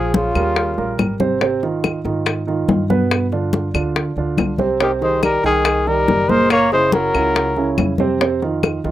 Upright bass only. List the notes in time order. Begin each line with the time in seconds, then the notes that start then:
Already playing: A#1
0.35 D#2
0.78 A#1
0.98 G#1
2.05 G#2
2.68 G2
3.74 D2
4.16 D2
4.38 C2
5.44 C2
6.08 F#1
7.14 C#2
7.78 F2
8.84 C2